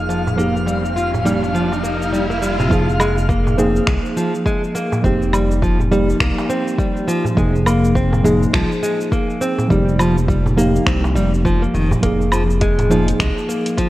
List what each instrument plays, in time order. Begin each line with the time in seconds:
Already playing: analog synth bass F1, synth keys F3 A#3 D#4 G#4, synth texture F5, riser
0.09 nylon-string guitar F3, darbuka ka, shaker
0.27 darbuka dum, shaker
0.36 analog synth bass F1, synth keys F3 A#3 D#4, nylon-string guitar A#3, shaker
0.40 synth keys G4
0.57 shaker
0.66 nylon-string guitar G3, darbuka ka, shaker
0.84 darbuka ka, darbuka tek, shaker
0.96 nylon-string guitar F4, shaker
1.14 darbuka dum, shaker
1.24 synth keys F3 A#3 D#4 G4, nylon-string guitar G3, darbuka dum, shaker
1.43 darbuka tek, shaker
1.54 nylon-string guitar F3, shaker
1.72 darbuka tek, shaker
1.83 nylon-string guitar A#3, shaker
2.02 shaker
2.12 nylon-string guitar G3, shaker
2.30 nylon-string guitar A#3, darbuka ka, shaker
2.42 nylon-string guitar G3, darbuka ka, shaker
2.59 nylon-string guitar C3, darbuka dum, shaker
2.69 analog synth bass F1, synth keys F3 A#3 D#4 G#4, nylon-string guitar F3, kick, shaker
2.89 shaker
3.00 nylon-string guitar G#3, darbuka ka, low woodblock, shaker
3.18 shaker
3.29 nylon-string guitar A#3, kick, shaker
3.47 darbuka dum, shaker
3.57 synth keys F3 A#3 D#4 G#4, nylon-string guitar C4, darbuka dum, shaker
3.76 shaker
3.87 analog synth bass C2, nylon-string guitar G#3, finger snap, kick, shaker
4.05 shaker
4.17 nylon-string guitar F3, shaker
4.35 shaker
4.46 nylon-string guitar G#3, kick, shaker
4.64 shaker
4.75 nylon-string guitar A#3, darbuka ka, shaker
4.92 darbuka dum, shaker
5.02 analog synth bass F1, synth keys F3 A#3 D#4, nylon-string guitar C4, kick, shaker
5.06 synth keys G4
5.22 shaker
5.33 nylon-string guitar G3, darbuka ka, low woodblock, shaker
5.51 darbuka tek, shaker
5.62 nylon-string guitar F3, kick, shaker
5.80 darbuka dum, shaker
5.91 synth keys F3 A#3 D#4 G4, nylon-string guitar G3, shaker
6.10 shaker
6.20 analog synth bass C2, nylon-string guitar A#3, finger snap, kick, shaker
6.38 darbuka tek, shaker
6.50 nylon-string guitar C4, shaker
6.68 shaker
6.79 nylon-string guitar G3, kick, shaker
6.97 darbuka ka, shaker
7.08 nylon-string guitar F3, darbuka ka, shaker
7.25 darbuka dum, shaker
7.35 analog synth bass F1, synth keys F3 A#3 D#4, nylon-string guitar G#3, kick, shaker
7.39 synth keys G#4
7.55 shaker
7.66 nylon-string guitar A#3, darbuka ka, low woodblock, shaker
7.84 shaker
7.95 nylon-string guitar C4, kick, shaker
8.12 darbuka dum, shaker
8.23 synth keys F3 A#3 D#4 G#4, nylon-string guitar G#3, darbuka dum, shaker
8.43 shaker
8.53 analog synth bass C2, nylon-string guitar F3, finger snap, kick, shaker
8.72 shaker
8.83 nylon-string guitar G#3, shaker
9.01 shaker
9.12 nylon-string guitar A#3, kick, shaker
9.30 shaker
9.41 nylon-string guitar C4, darbuka ka, shaker
9.58 darbuka dum, shaker
9.68 analog synth bass F1, synth keys F3 A#3 D#4, nylon-string guitar G3, kick, shaker
9.72 synth keys G4
9.89 shaker
9.99 nylon-string guitar F3, darbuka ka, low woodblock, shaker
10.16 darbuka ka, darbuka tek, shaker
10.28 nylon-string guitar G3, kick, shaker
10.46 darbuka dum, shaker
10.56 synth keys F3 A#3 D#4 G4, nylon-string guitar A#3, shaker
10.76 shaker
10.87 analog synth bass C2, nylon-string guitar C4, finger snap, kick, shaker
11.04 darbuka tek, shaker
11.15 analog synth bass F1, nylon-string guitar G3, shaker
11.34 shaker
11.45 nylon-string guitar F3, kick, shaker
11.62 nylon-string guitar A#3, darbuka ka, shaker
11.74 analog synth bass F1, nylon-string guitar D#3, darbuka ka, shaker
11.91 darbuka dum, shaker
12.01 analog synth bass F1, synth keys F3 A#3 D#4, nylon-string guitar A#3, kick, closed hi-hat, shaker
12.05 synth keys G#4
12.21 shaker
12.32 nylon-string guitar F3, darbuka ka, low woodblock, shaker
12.50 shaker
12.61 nylon-string guitar G#3, kick, closed hi-hat, shaker
12.79 closed hi-hat, darbuka dum, shaker
12.89 synth keys F3 A#3 D#4 G#4, nylon-string guitar F3, darbuka dum, shaker
13.08 closed hi-hat, shaker
13.20 analog synth bass C2, nylon-string guitar G#3, finger snap, kick, closed hi-hat, shaker
13.38 shaker
13.49 nylon-string guitar A#3, shaker
13.66 closed hi-hat, shaker
13.78 nylon-string guitar F3, kick, closed hi-hat, shaker